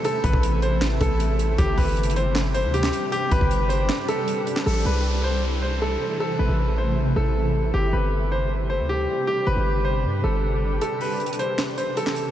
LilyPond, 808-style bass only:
\new Staff \with { instrumentName = "808-style bass" } { \clef bass \time 4/4 \key a \minor \tempo 4 = 156 r8 a,,16 a,,4.~ a,,16 a,,4. | g,,8 g,,2~ g,,16 d,8. r8 | r8 g,,16 g,,4~ g,,16 r2 | a,,8 c,2. r8 |
r8 a,,16 a,,4.~ a,,16 a,,4. | g,,8 g,,2~ g,,16 d,8. r8 | r8 g,,16 g,,4~ g,,16 g,8 g,,4. | r1 | }